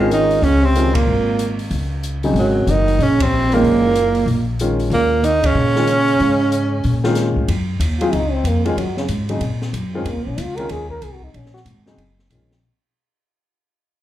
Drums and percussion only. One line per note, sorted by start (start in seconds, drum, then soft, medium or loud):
0.11 closed hi-hat medium
0.31 open hi-hat soft
0.43 open hi-hat soft
0.75 closed hi-hat medium
0.95 kick medium
0.95 ride medium
1.39 closed hi-hat medium
1.59 open hi-hat soft
1.71 open hi-hat soft
2.03 closed hi-hat medium
2.23 open hi-hat soft
2.36 open hi-hat soft
2.67 closed hi-hat medium
2.88 open hi-hat soft
3.00 open hi-hat soft
3.20 kick medium
3.20 ride medium
3.52 open hi-hat soft
3.64 open hi-hat soft
3.95 closed hi-hat medium
4.15 open hi-hat soft
4.28 open hi-hat soft
4.59 closed hi-hat medium
4.80 open hi-hat soft
4.91 open hi-hat soft
5.24 closed hi-hat medium
5.44 kick medium
5.44 ride medium
5.76 snare soft
5.87 closed hi-hat medium
6.08 open hi-hat soft
6.20 open hi-hat soft
6.52 closed hi-hat medium
6.84 open hi-hat soft
7.04 snare soft
7.15 snare soft
7.15 closed hi-hat medium
7.36 kick medium
7.48 ride medium
7.80 hi-hat pedal medium
7.80 ride medium
8.01 ride soft
8.13 ride medium
8.45 hi-hat pedal medium
8.45 ride medium
8.66 ride soft
8.78 ride medium
8.97 snare soft
9.08 hi-hat pedal medium
9.08 ride medium
9.29 ride soft
9.41 ride medium
9.62 snare soft
9.74 hi-hat pedal medium
9.74 ride medium
10.05 ride medium
10.38 hi-hat pedal soft
10.38 ride medium
10.57 ride soft
10.69 ride medium
10.90 kick soft
11.02 hi-hat pedal medium
11.02 ride medium
11.22 kick medium
11.34 ride medium
11.46 snare soft
11.56 snare soft
11.66 hi-hat pedal medium
11.66 ride medium
11.86 snare medium
11.98 ride medium
12.19 snare soft
12.30 hi-hat pedal medium
12.30 ride medium
12.51 snare medium